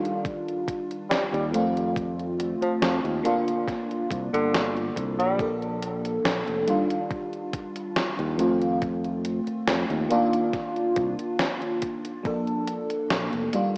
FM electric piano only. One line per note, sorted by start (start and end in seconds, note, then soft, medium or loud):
0.00 1.45 D#3 medium
0.00 1.45 G3 medium
0.00 1.46 D4 medium
0.00 1.46 F4 medium
1.52 3.16 D#3 medium
1.52 3.17 A3 medium
1.52 3.17 C4 medium
1.52 3.18 F4 medium
3.23 5.30 D3 medium
3.23 5.31 A#3 medium
3.23 5.31 D4 medium
3.23 5.32 F4 loud
5.37 6.59 F3 medium
5.37 6.59 A#3 medium
5.37 6.60 D4 medium
5.37 6.60 A4 medium
6.66 8.30 D#3 medium
6.66 8.31 G3 medium
6.66 8.31 D4 medium
6.66 8.32 F4 medium
8.37 10.02 D#3 medium
8.37 10.02 A3 medium
8.37 10.03 C4 medium
8.37 10.03 F4 medium
10.09 12.16 D#3 medium
10.09 12.17 A#3 medium
10.09 12.17 D4 medium
10.09 12.17 F4 loud
12.23 13.45 F3 medium
12.23 13.45 A#3 medium
12.23 13.46 D4 medium
12.23 13.46 A4 medium
13.53 13.78 D#3 medium
13.53 13.78 G3 medium
13.53 13.78 D4 medium
13.53 13.78 F4 medium